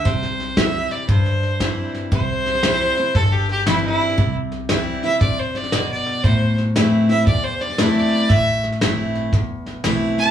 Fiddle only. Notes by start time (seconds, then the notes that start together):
0.05 C5
0.57 E5
0.91 D5
1.09 C5
2.12 C5
3.16 A4
3.32 G4
3.51 G4
3.67 E4
3.85 E4
5.05 E5
5.21 D5
5.39 C5
5.56 D5
5.91 D5
6.23 C5
7.10 E5
7.26 D5
7.43 C5
7.61 D5
7.96 D5
8.29 E5
10.19 A5